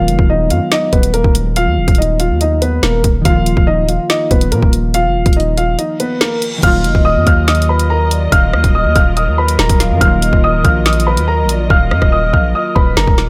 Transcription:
Already playing: D#3 F#3 G#3 B3 F4 F5
0.08 F1, closed hi-hat
0.19 D#1, kick
0.30 D#4 D#5
0.50 F#2 F4 F5, closed hi-hat
0.72 D#4 D#5, snare
0.93 D#1 B3 B4, kick, closed hi-hat
1.03 closed hi-hat
1.14 A#3 A#4, closed hi-hat
1.24 D#1, kick
1.35 closed hi-hat
1.56 F4 F5, closed hi-hat
1.67 D#2
1.77 D#1
1.88 D#1, kick, closed hi-hat
1.95 D#5, closed hi-hat
1.99 D#4, closed hi-hat
2.20 F4 F5, closed hi-hat
2.30 D#2
2.41 D#4 D#5, closed hi-hat
2.62 B3 B4, closed hi-hat
2.83 D#1 A#3 A#4, snare
3.04 D#1, kick, closed hi-hat
3.21 D#1 D#3 F3, kick, closed hi-hat
3.25 A#3 F4 F5
3.30 F4
3.46 closed hi-hat
3.57 D#1, kick
3.67 D#4 D#5
3.78 D1
3.89 D#1 F4 F5, closed hi-hat
4.10 D#4 D#5, snare
4.31 D#1 B3 B4, kick, closed hi-hat
4.41 closed hi-hat
4.52 A#2 A#3 A#4, closed hi-hat
4.62 D#1, kick
4.73 closed hi-hat
4.94 F4 F5, closed hi-hat
5.05 F1
5.15 D#1
5.26 D#1, kick, closed hi-hat
5.33 D#5, closed hi-hat
5.37 D#4, closed hi-hat
5.57 F4 F5, closed hi-hat
5.79 D#4 D#5, closed hi-hat, reverse cymbal
6.00 B3 B4, closed hi-hat
6.21 A#3 A#4, snare
6.42 closed hi-hat
6.58 D#3 F#3
6.63 D#1 F#3 A#3 F4 A#4 D#5 F5 F6, kick, closed hi-hat, crash
6.84 F1 D#5, closed hi-hat
6.95 D#1, kick
7.05 D#5 D#6
7.16 F#2
7.27 D#2 F5 F6, kick, closed hi-hat
7.48 D#5 D#6, snare, closed hi-hat
7.55 closed hi-hat
7.62 closed hi-hat
7.69 B4 B5
7.79 closed hi-hat
7.90 A#4 A#5
8.11 D5, closed hi-hat
8.32 D#1 F5 F6, kick, closed hi-hat
8.53 D#2 D#5, cross-stick
8.64 D#1, kick, closed hi-hat
8.75 D#5 D#6
8.85 D#2
8.96 D#1 F5 F6, kick, closed hi-hat
9.17 D#5 D#6, closed hi-hat
9.27 D#2
9.38 B4 B5
9.48 closed hi-hat
9.59 D#1 A#4 A#5, snare
9.69 D#1, kick, closed hi-hat
9.80 F5, snare, closed hi-hat
9.91 F#2
9.97 D#3 F#3
10.01 D#1 A#3 D#5 F5 F6, kick, closed hi-hat
10.05 F4
10.22 D#5, closed hi-hat
10.33 D#1, kick
10.44 D#5 D#6
10.54 D1
10.64 A#1 F5 F6, kick, closed hi-hat
10.86 D#5 D#6, snare, closed hi-hat
10.93 closed hi-hat
11.00 closed hi-hat
11.07 B4 B5
11.17 D#2, closed hi-hat
11.28 A#4 A#5
11.44 A#1
11.49 D5, closed hi-hat
11.70 D#1 F5 F6, kick
11.91 F#2 D#5, cross-stick
12.02 D#1, kick, cross-stick
12.12 D#5 D#6
12.33 A#1 F5 F6, kick
12.55 D#5 D#6
12.75 D#1 B4 B5, kick
12.97 F#1 A#4 A#5, snare
13.07 D#1, kick
13.18 snare

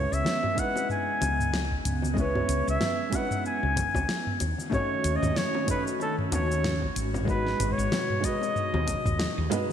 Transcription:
Already playing: G#3 B3 C#4 E4 B4 C#5
0.12 C#2 E5, shaker
0.25 snare, high conga, shaker
0.43 mid tom, high bongo
0.54 G#3 C#4 D#4, kick, closed hi-hat
0.59 E4 B4 F#5, shaker
0.76 high bongo, shaker
0.90 G#5, mid tom, shaker
1.21 C#2, closed hi-hat, high bongo, high conga, low conga, shaker
1.40 mid tom, shaker
1.53 snare, high bongo, shaker
1.71 kick
1.85 C#2, closed hi-hat, mid tom, shaker
2.02 high bongo, high conga, shaker
2.13 G#3 C#4 D#5, kick
2.17 B3 E4 B4 C#5, shaker
2.35 mid tom, high bongo
2.48 C#2, closed hi-hat, shaker
2.67 C#2 E5, shaker
2.80 snare, mid tom, high bongo, high conga, shaker
3.10 G#3 C#4 D#4, kick, closed hi-hat, high bongo, shaker
3.14 E4 B4 F#5
3.31 mid tom, shaker
3.46 G#5, shaker
3.63 C#2, high bongo
3.76 kick, closed hi-hat, mid tom, high conga, low conga, shaker
3.94 C#2, kick, high bongo, shaker
4.09 snare, shaker
4.27 mid tom
4.40 D#2 D#3 C#4 F#4, closed hi-hat, high bongo, shaker
4.58 high conga, shaker
4.70 A3 C#4 D#4 C#5, kick, mid tom, high bongo, shaker
4.74 F#4 C#5
5.04 D#2, closed hi-hat, shaker
5.16 D#5
5.22 D#2, mid tom, high bongo, shaker
5.36 C#5, snare, high conga, shaker
5.55 high bongo
5.66 A3 C#4 D#4, kick, closed hi-hat, mid tom, shaker
5.70 F#4 B4 C#5
5.87 shaker
6.00 A4, high bongo, shaker
6.19 mid tom
6.32 D#2 C#5, closed hi-hat, high bongo, high conga, low conga, shaker
6.52 shaker
6.64 snare, mid tom, shaker
6.82 kick, high bongo
6.96 G#1, closed hi-hat, shaker
7.14 mid tom, high bongo, high conga, shaker
7.25 B2 G#3 B3 D#4, kick, shaker
7.30 F#4 B4
7.47 snare
7.60 G#1, closed hi-hat, mid tom, high bongo, shaker
7.72 C#5
7.78 G#1, shaker
7.92 snare, high bongo, high conga, shaker
8.10 mid tom
8.20 G#3 B3 D#4, kick, closed hi-hat
8.24 F#4 B4 D#5, shaker
8.42 high bongo, shaker
8.56 mid tom, shaker
8.74 D#2, high bongo
8.87 kick, closed hi-hat, high conga, low conga, shaker
9.06 D#2, kick, mid tom, shaker
9.19 snare, high bongo, shaker
9.38 D#2
9.50 G#3 B3 D#4 F#4 B4, closed hi-hat, mid tom, high bongo, shaker

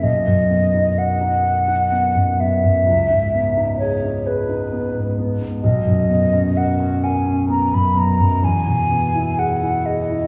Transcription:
0.03 B1 D#5
0.27 F#2
0.50 B3
0.74 D#4
0.98 A#4 F#5
1.21 D#4
1.43 A#4
1.68 D#4
1.92 B3
2.15 F#2
2.39 B3 E5
2.64 F#2
2.86 C#2
3.10 G#2
3.34 B3
3.57 D#4
3.79 G#4 C#5
4.04 D#4
4.27 G#4 B4
4.49 D#4
4.72 B3
4.94 G#2
5.18 B3
5.41 G#2
5.63 B1 D#5
5.86 F#2
6.09 B3
6.33 C#4
6.57 A#4 F#5
6.80 C#4
7.03 A#4 G#5
7.26 C#4
7.48 B3 A#5
7.72 F#2 B5
7.96 B3 A#5
8.19 F#2
8.43 E2 G#5
8.66 B2
8.90 B3
9.14 E4
9.38 G#4 F#5
9.61 E4
9.85 G#4 D#5
10.09 E4

